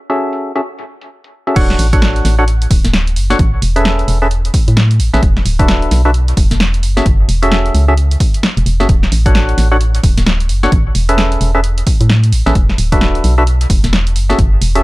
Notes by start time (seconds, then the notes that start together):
0.10 C#4 F#4 G#4 A4 E5, closed hi-hat
0.33 closed hi-hat
0.56 C#4 F#4 G#4 A4 E5, closed hi-hat
0.79 closed hi-hat
1.01 closed hi-hat
1.24 closed hi-hat
1.47 C#4 F#4 G#4 A4 E5, closed hi-hat
1.56 D1 D4 F#4 A4 C#5 F#5, kick, closed hi-hat, crash
1.70 snare
1.79 A1, open hi-hat
1.93 D4 F#4 A4 C#5 F#5, kick, closed hi-hat
2.02 snare
2.16 closed hi-hat
2.25 A1, snare, open hi-hat
2.39 D4 F#4 A4 C#5 F#5
2.48 closed hi-hat
2.62 closed hi-hat
2.71 D1, kick, open hi-hat
2.85 D1, snare, closed hi-hat
2.93 snare
3.07 closed hi-hat
3.16 F#1, open hi-hat
3.30 D4 F#4 A4 C#5 F#5, snare
3.39 A1, kick, closed hi-hat
3.62 E1, open hi-hat
3.76 C#4 G#4 A4 B4 E5, closed hi-hat
3.85 snare
3.99 closed hi-hat
4.08 E1, open hi-hat
4.22 C#4 G#4 A4 B4 E5
4.31 closed hi-hat
4.45 closed hi-hat
4.54 kick, open hi-hat
4.68 A2, closed hi-hat
4.77 snare
4.91 closed hi-hat
5.00 A1, open hi-hat
5.13 A1 C#4 G#4 A4 B4 E5, snare
5.23 E1, kick, closed hi-hat
5.37 snare
5.45 D1, open hi-hat
5.59 D4 F#4 A4 B4 E5, kick, closed hi-hat
5.68 snare
5.82 closed hi-hat
5.91 B1, snare, open hi-hat
6.05 D4 F#4 A4 B4 E5
6.14 closed hi-hat
6.28 closed hi-hat
6.37 E1, kick, open hi-hat
6.51 E1, snare, closed hi-hat
6.60 snare
6.74 closed hi-hat
6.83 F#1, open hi-hat
6.97 C#4 F#4 G#4 A4 E5, snare
7.06 F#1, kick, closed hi-hat
7.29 E1, open hi-hat
7.42 C#4 F#4 G#4 A4 E5, closed hi-hat
7.52 snare
7.66 closed hi-hat
7.74 C#2, open hi-hat
7.88 C#4 F#4 G#4 A4 E5
7.97 closed hi-hat
8.11 closed hi-hat
8.20 kick, open hi-hat
8.34 closed hi-hat
8.43 snare
8.57 E1, closed hi-hat
8.66 E1, open hi-hat
8.80 F#1 C#4 F#4 G#4 A4 E5, snare
8.89 D1, kick, closed hi-hat
9.03 snare
9.12 A1, open hi-hat
9.26 D4 F#4 A4 C#5 F#5, kick, closed hi-hat
9.35 snare
9.49 closed hi-hat
9.58 A1, snare, open hi-hat
9.72 D4 F#4 A4 C#5 F#5
9.81 closed hi-hat
9.95 closed hi-hat
10.03 D1, kick, open hi-hat
10.18 D1, snare, closed hi-hat
10.26 snare
10.40 closed hi-hat
10.49 F#1, open hi-hat
10.63 D4 F#4 A4 C#5 F#5, snare
10.72 A1, kick, closed hi-hat
10.95 E1, open hi-hat
11.09 C#4 G#4 A4 B4 E5, closed hi-hat
11.18 snare
11.32 closed hi-hat
11.41 E1, open hi-hat
11.55 C#4 G#4 A4 B4 E5
11.64 closed hi-hat
11.78 closed hi-hat
11.87 kick, open hi-hat
12.01 A2, closed hi-hat
12.10 snare
12.24 closed hi-hat
12.32 A1, open hi-hat
12.46 A1 C#4 G#4 A4 B4 E5, snare
12.55 E1, kick, closed hi-hat
12.69 snare
12.78 D1, open hi-hat
12.92 D4 F#4 A4 B4 E5, kick, closed hi-hat
13.01 snare
13.15 closed hi-hat
13.24 B1, open hi-hat
13.38 D4 F#4 A4 B4 E5
13.47 closed hi-hat
13.61 closed hi-hat
13.70 E1, kick, open hi-hat
13.84 E1, snare, closed hi-hat
13.93 snare
14.07 closed hi-hat
14.16 F#1, open hi-hat
14.30 C#4 F#4 G#4 A4 E5, snare
14.39 F#1, kick, closed hi-hat
14.61 E1, open hi-hat
14.75 C#4 F#4 G#4 A4 E5, closed hi-hat